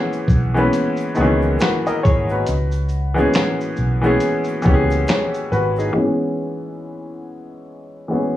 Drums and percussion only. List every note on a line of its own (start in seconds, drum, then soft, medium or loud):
0.13 shaker soft
0.28 kick medium
0.28 shaker soft
0.56 shaker soft
0.73 closed hi-hat medium
0.73 shaker medium
0.97 shaker soft
1.00 shaker medium
1.15 shaker soft
1.17 shaker soft
1.42 shaker medium
1.59 closed hi-hat medium
1.59 shaker medium
1.60 finger snap medium
1.60 snare loud
1.60 shaker medium
1.86 shaker soft
2.05 kick medium
2.05 shaker soft
2.29 shaker soft
2.46 closed hi-hat medium
2.46 shaker medium
2.72 shaker soft
2.74 shaker soft
2.89 shaker soft
2.90 shaker soft
3.18 shaker soft
3.34 finger snap medium
3.34 closed hi-hat medium
3.34 shaker medium
3.35 snare loud
3.35 shaker medium
3.61 shaker soft
3.77 shaker soft
4.04 shaker soft
4.20 closed hi-hat medium
4.20 shaker medium
4.44 shaker soft
4.48 shaker soft
4.62 shaker soft
4.64 kick medium
4.64 shaker soft
4.90 shaker medium
4.90 shaker soft
5.07 finger snap medium
5.07 snare loud
5.07 closed hi-hat medium
5.07 shaker medium
5.34 shaker soft
5.52 shaker soft
5.76 shaker soft
5.79 shaker soft